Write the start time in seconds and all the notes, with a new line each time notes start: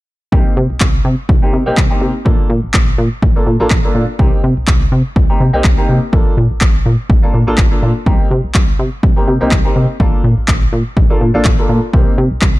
0.32 C2 A#3 C4 D#4 G4, kick
0.57 C3
0.70 C2
0.80 C2, kick, clap
1.05 C3
1.29 C2, kick
1.42 A#3 C4 D#4 G4
1.53 C3
1.66 C2 A#3 C4 D#4 G4
1.77 C2, kick, clap
1.90 A#3 C4 D#4 G4
2.01 C3
2.25 A#1 A#3 D4 F4 A4, kick
2.50 A#2
2.63 A#1
2.74 A#1, kick, clap
2.98 A#2
3.22 A#1, kick
3.36 A#3 D4 F4 A4
3.47 A#2
3.60 A#1 A#3 D4 F4 A4
3.70 A#1, kick, clap
3.84 A#3 D4 F4 A4
3.95 A#2
4.19 C2 A#3 C4 D#4 G4, kick
4.44 C3
4.57 C2
4.68 C2, kick, clap
4.92 C3
5.16 C2, kick
5.29 A#3 C4 D#4 G4
5.40 C3
5.53 C2 A#3 C4 D#4 G4
5.64 C2, kick, clap
5.77 A#3 C4 D#4 G4
5.89 C3
6.12 A#1 A#3 D4 F4 A4, kick
6.37 A#2
6.51 A#1
6.61 A#1, kick, clap
6.86 A#2
7.10 A#1, kick
7.22 A#3 D4 F4 A4
7.34 A#2
7.47 A#1 A#3 D4 F4 A4
7.58 A#1, kick, clap
7.71 A#3 D4 F4 A4
7.83 A#2
8.06 C2 A#3 C4 D#4 G4, kick
8.31 C3
8.44 C2
8.54 C2, kick, clap
8.79 C3
9.03 C2, kick
9.16 A#3 C4 D#4 G4
9.28 C3
9.41 C2 A#3 C4 D#4 G4
9.51 C2, kick, clap
9.64 A#3 C4 D#4 G4
9.76 C3
10.00 A#1 A#3 D4 F4 A4, kick
10.24 A#2
10.38 A#1
10.48 A#1, kick, clap
10.72 A#2
10.97 A#1, kick
11.10 A#3 D4 F4 A4
11.21 A#2
11.34 A#1 A#3 D4 F4 A4
11.45 A#1, kick, clap
11.58 A#3 D4 F4 A4
11.69 A#2
11.93 C2 A#3 C4 D#4 G4, kick
12.18 C3
12.31 C2
12.41 C2, kick, clap